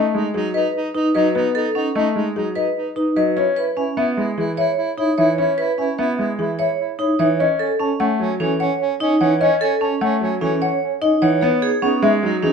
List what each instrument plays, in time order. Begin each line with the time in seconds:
Already playing: grand piano A3, marimba D#5
0.15 grand piano G#3, soprano saxophone D#4
0.34 grand piano F#3, soprano saxophone D#4, marimba G#4
0.54 soprano saxophone D#4, vibraphone B4, marimba D#5
0.75 soprano saxophone D#4
0.95 vibraphone D#4, soprano saxophone D#4, marimba B4
1.15 grand piano F#3, soprano saxophone D#4, vibraphone B4, marimba D#5
1.35 grand piano B3, soprano saxophone D#4, marimba B4
1.55 soprano saxophone D#4, vibraphone A4
1.75 vibraphone C#4, soprano saxophone D#4, marimba F#5
1.95 grand piano A3, soprano saxophone D#4, marimba D#5
2.15 grand piano G#3, soprano saxophone D#4
2.35 grand piano F#3, soprano saxophone D#4, marimba G#4
2.55 soprano saxophone D#4, vibraphone B4, marimba D#5
2.76 soprano saxophone D#4
2.96 vibraphone D#4, soprano saxophone D#4, marimba B4
3.16 grand piano F#3, vibraphone B4, marimba D#5
3.37 grand piano C#4, soprano saxophone E4, marimba C#5
3.57 soprano saxophone E4, vibraphone B4
3.77 vibraphone C#4, soprano saxophone E4, marimba G#5
3.97 grand piano B3, soprano saxophone E4, marimba E5
4.17 grand piano G#3, soprano saxophone E4
4.38 grand piano E3, soprano saxophone E4, marimba G#4
4.57 soprano saxophone E4, vibraphone C#5, marimba E5
4.78 soprano saxophone E4
4.98 vibraphone D#4, soprano saxophone E4, marimba C#5
5.18 grand piano E3, soprano saxophone E4, vibraphone C#5, marimba E5
5.38 grand piano C#4, soprano saxophone E4, marimba C#5
5.58 soprano saxophone E4, vibraphone B4
5.78 vibraphone C#4, soprano saxophone E4, marimba G#5
5.99 grand piano B3, soprano saxophone E4, marimba E5
6.19 grand piano G#3, soprano saxophone E4
6.39 grand piano E3, soprano saxophone E4, marimba G#4
6.59 soprano saxophone E4, vibraphone C#5, marimba E5
6.80 soprano saxophone E4
6.99 vibraphone D#4, soprano saxophone E4, marimba C#5
7.19 grand piano E3, vibraphone C#5, marimba E5
7.40 soprano saxophone C#4, grand piano C#4, marimba D#5
7.59 soprano saxophone C#4, vibraphone A4
7.80 vibraphone C#4, soprano saxophone C#4, marimba A5
8.00 grand piano A3, soprano saxophone C#4, marimba F#5
8.20 grand piano F#3, soprano saxophone C#4
8.40 grand piano E3, vibraphone C#4, soprano saxophone C#4, marimba A4
8.60 soprano saxophone C#4, vibraphone C#5, marimba F#5
8.80 soprano saxophone C#4
9.00 soprano saxophone C#4, vibraphone D#4, marimba D#5
9.21 grand piano E3, soprano saxophone C#4, vibraphone C#5, marimba F#5
9.40 grand piano C#4, soprano saxophone C#4, marimba D#5
9.61 soprano saxophone C#4, vibraphone A4
9.81 vibraphone C#4, soprano saxophone C#4, marimba A5
10.01 grand piano A3, soprano saxophone C#4, marimba F#5
10.21 grand piano F#3, soprano saxophone C#4
10.41 grand piano E3, vibraphone C#4, soprano saxophone C#4, marimba A4
10.62 soprano saxophone C#4, vibraphone C#5, marimba F#5
10.82 soprano saxophone C#4
11.02 soprano saxophone C#4, vibraphone D#4, marimba D#5
11.22 grand piano E3, vibraphone C#5, marimba F#5
11.41 grand piano B3, soprano saxophone D#4, marimba C#5
11.62 soprano saxophone D#4, vibraphone G#4
11.82 grand piano B3, vibraphone C#4, soprano saxophone D#4, marimba F#5
12.02 grand piano G#3, soprano saxophone D#4, marimba E5
12.23 grand piano F#3, soprano saxophone D#4
12.43 grand piano E3, vibraphone C#4, soprano saxophone D#4, marimba G#4